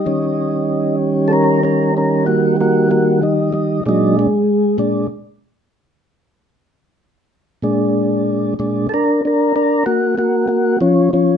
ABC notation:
X:1
M:12/8
L:1/8
Q:3/8=63
K:Bbdor
V:1 name="Tonewheel organ"
E3 z [D=AB] [DB] [DB] [B,_G] [B,G] [B,G] [=G,E] [G,E] | [_G,E] A,2 z8 z | z4 [=D=AB] [DB] [DB] [B,_G] [B,G] [B,G] [F,_D] [F,D] |]
V:2 name="Tonewheel organ" clef=bass
[E,G,D]12 | [B,,A,=D] z2 [B,,A,D] z8 | [B,,A,=D]3 [B,,A,D] z8 |]